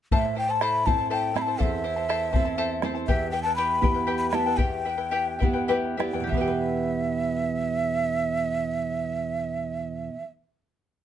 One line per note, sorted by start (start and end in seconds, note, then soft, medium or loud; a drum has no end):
0.12 1.55 A2 medium
0.12 0.35 E4 medium
0.12 0.36 A4 medium
0.12 0.35 C5 medium
0.12 0.34 E5 medium
0.12 0.36 E5 medium
0.12 0.36 A5 medium
0.12 bombo low medium
0.25 bombo rim soft
0.36 0.48 E4 medium
0.36 0.47 C5 medium
0.36 0.48 E5 soft
0.36 0.52 G5 medium
0.36 0.46 A5 medium
0.36 bombo rim soft
0.48 0.60 E4 soft
0.48 0.61 C5 soft
0.48 0.60 A5 soft
0.48 0.64 A5 medium
0.61 0.85 E4 medium
0.61 0.86 A4 medium
0.61 0.86 C5 medium
0.61 0.85 E5 medium
0.61 0.86 A5 medium
0.61 0.88 B5 medium
0.61 bombo rim medium
0.86 1.34 C4 soft
0.86 1.33 E4 soft
0.86 0.98 E4 soft
0.86 1.34 A4 soft
0.86 0.97 C5 medium
0.86 0.98 E5 soft
0.86 1.10 A5 medium
0.86 0.97 A5 soft
0.86 bombo rim soft
0.86 bombo low medium
0.98 1.09 E4 soft
0.98 1.10 C5 soft
0.98 1.10 A5 soft
1.10 1.33 E4 medium
1.10 1.35 A4 medium
1.10 1.34 C5 medium
1.10 1.33 E5 medium
1.10 1.39 G5 medium
1.10 1.34 A5 medium
1.34 1.83 C4 soft
1.34 1.47 E4 medium
1.34 1.83 E4 soft
1.34 1.83 A4 soft
1.34 1.47 C5 medium
1.34 1.46 E5 soft
1.34 1.45 A5 medium
1.34 1.43 B5 medium
1.34 bombo rim medium
1.42 1.63 A5 medium
1.47 1.58 E4 soft
1.47 1.58 C5 soft
1.47 1.58 A5 soft
1.58 1.83 E4 medium
1.58 1.83 A4 medium
1.58 1.83 C5 medium
1.58 1.82 E5 medium
1.58 2.83 E5 medium
1.58 1.84 A5 medium
1.58 bombo low medium
1.63 3.05 E2 soft
1.73 bombo rim soft
1.84 1.96 E4 medium
1.84 1.95 C5 medium
1.84 1.96 E5 soft
1.84 1.95 A5 medium
1.84 bombo rim soft
1.96 2.08 E4 soft
1.96 2.09 C5 soft
1.96 2.08 A5 soft
2.09 2.31 E4 medium
2.09 2.32 A4 medium
2.09 2.32 C5 medium
2.09 2.31 E5 medium
2.09 2.32 A5 medium
2.09 bombo rim medium
2.32 2.81 C4 soft
2.32 2.45 E4 medium
2.32 2.82 E4 soft
2.32 2.45 C5 medium
2.32 2.45 E5 medium
2.32 2.44 A5 medium
2.32 bombo rim soft
2.32 bombo low medium
2.36 2.82 A4 soft
2.45 2.57 E4 soft
2.45 2.57 C5 soft
2.45 2.57 A5 soft
2.57 2.82 E4 medium
2.57 2.82 A4 medium
2.57 2.82 C5 medium
2.57 2.82 E5 medium
2.57 2.82 A5 medium
2.82 3.06 C4 soft
2.82 3.06 E4 soft
2.82 2.95 E4 medium
2.82 3.06 A4 soft
2.82 2.95 C5 medium
2.82 2.95 E5 medium
2.82 2.93 A5 medium
2.82 bombo rim medium
2.95 3.08 E4 soft
2.95 3.07 C5 soft
2.95 3.07 A5 soft
3.07 4.55 E2 medium
3.07 3.31 E4 medium
3.07 3.32 G4 medium
3.07 3.32 B4 medium
3.07 3.30 E5 medium
3.07 3.31 E5 medium
3.07 3.32 G5 medium
3.07 bombo low medium
3.21 bombo rim soft
3.31 3.44 E4 medium
3.31 3.45 B4 medium
3.31 3.44 E5 medium
3.31 3.42 G5 medium
3.31 3.45 G5 medium
3.31 bombo rim soft
3.43 3.57 B4 soft
3.43 3.57 G5 soft
3.43 3.55 A5 medium
3.47 3.57 E4 soft
3.56 3.82 E4 medium
3.56 3.82 G4 medium
3.56 3.82 B4 medium
3.56 3.81 E5 medium
3.56 3.82 G5 medium
3.56 4.15 B5 medium
3.81 4.31 B3 soft
3.81 4.31 E4 soft
3.81 3.95 E4 soft
3.81 4.31 G4 soft
3.81 3.94 B4 medium
3.81 3.94 E5 soft
3.81 3.93 G5 medium
3.81 bombo rim soft
3.81 bombo low medium
3.94 4.06 E4 soft
3.94 4.06 B4 soft
3.94 4.06 G5 soft
4.07 4.32 E4 medium
4.07 4.33 G4 medium
4.07 4.32 B4 medium
4.07 4.31 E5 medium
4.07 4.33 G5 medium
4.18 4.29 B5 medium
4.30 4.58 B3 soft
4.30 4.58 E4 soft
4.30 4.46 E4 medium
4.30 4.58 G4 soft
4.30 4.46 B4 medium
4.30 4.46 E5 medium
4.30 4.45 G5 medium
4.30 4.35 B5 medium
4.30 bombo rim medium
4.34 4.58 A5 medium
4.46 4.57 E4 soft
4.46 4.57 B4 soft
4.46 4.57 G5 soft
4.57 6.12 E2 medium
4.57 4.84 E4 medium
4.57 4.85 G4 medium
4.57 4.85 B4 medium
4.57 4.84 E5 medium
4.57 5.68 G5 medium
4.57 4.85 G5 medium
4.57 bombo low medium
4.85 4.97 E4 medium
4.85 4.96 B4 medium
4.85 4.99 E5 soft
4.85 4.96 G5 medium
4.98 5.11 E4 soft
4.98 5.11 B4 soft
4.98 5.11 G5 soft
5.11 5.38 E4 medium
5.11 5.40 G4 medium
5.11 5.39 B4 medium
5.11 5.38 E5 medium
5.11 5.39 G5 medium
5.27 bombo rim soft
5.39 5.97 B3 soft
5.39 5.54 E4 medium
5.39 5.53 B4 medium
5.39 5.54 E5 medium
5.39 5.52 G5 medium
5.39 bombo low medium
5.43 5.98 E4 soft
5.43 5.98 G4 soft
5.53 5.67 E4 soft
5.53 5.68 B4 soft
5.53 5.68 G5 soft
5.68 5.96 E4 medium
5.68 5.98 G4 medium
5.68 5.97 B4 medium
5.68 5.96 E5 medium
5.68 5.98 G5 medium
5.85 bombo rim soft
5.97 6.27 B3 soft
5.97 6.13 E4 medium
5.97 6.28 E4 soft
5.97 6.28 G4 soft
5.97 6.13 B4 medium
5.97 6.27 D5 medium
5.97 6.13 E5 medium
5.97 6.12 G5 medium
5.97 bombo rim medium
6.13 10.08 E2 soft
6.13 6.29 E4 soft
6.13 6.29 B4 soft
6.13 6.29 G5 soft
6.20 10.15 B2 soft
6.20 10.23 G4 medium
6.27 10.22 E3 soft
6.27 10.24 E5 medium
6.27 10.28 E5 medium
6.32 10.29 B3 soft
6.32 10.32 E4 medium
6.32 bombo low medium
6.37 10.36 G4 soft
6.37 10.36 B4 medium
6.37 10.40 G5 medium
6.48 10.43 B4 soft